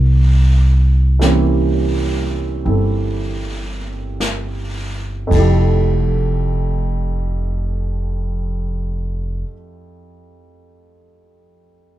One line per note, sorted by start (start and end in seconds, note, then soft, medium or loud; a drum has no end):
0.00 2.61 C2 medium
1.19 5.30 E3 soft
1.19 5.30 A#3 soft
1.19 2.64 C4 soft
1.19 5.31 C#4 soft
1.19 brush sweep soft
1.19 snare soft
1.19 hi-hat pedal soft
1.23 5.32 G4 medium
2.65 5.27 G1 medium
2.65 5.31 C4 soft
2.65 5.31 E4 soft
2.65 5.32 A4 soft
2.65 brush sweep soft
4.20 brush sweep soft
4.20 snare soft
4.20 hi-hat pedal soft
5.27 9.41 F2 soft
5.27 9.44 F3 soft
5.27 kick soft
5.31 9.42 F1 medium
5.31 9.48 A3 medium
5.31 ride soft
5.36 9.50 E4 soft
5.36 9.53 G4 medium